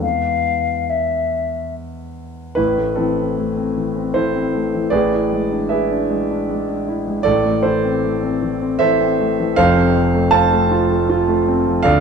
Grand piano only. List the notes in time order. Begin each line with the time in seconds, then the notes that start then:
Already playing: E2
0.00 G#3 B3 B4
2.55 A1 A2 E4 B4
2.78 A3
2.96 E3 C4 E4 A4
3.18 C4
3.38 A3
3.57 C4
3.77 E3
3.96 C4
4.14 E3 E4 A4 C5
4.35 C4
4.55 A3
4.75 E3
4.90 A1 A2 G#4 B4 D5
5.12 E4
5.32 G#3
5.52 D4
5.69 E4 G#4 B4 E5
5.91 D4
6.11 G#3
6.31 D4
6.49 G#3
6.69 D4
6.89 E4
7.07 G#3
7.23 A1 A2 A4 D5
7.46 A3
7.63 E3 E4 A4 C5
7.85 C4
8.04 A3
8.24 C4
8.42 E3
8.62 C4
8.79 E3 A4 C5 E5
9.01 C4
9.20 A3
9.39 E3
9.56 F1 F2 A4 C5 F5
9.77 C4
9.96 F3
10.15 A3
10.31 C4 C5 F5 A5
10.52 A3
10.71 F4
10.90 A3
11.10 F4
11.28 A3
11.48 C4
11.67 F3
11.83 D2 A4 D5 F5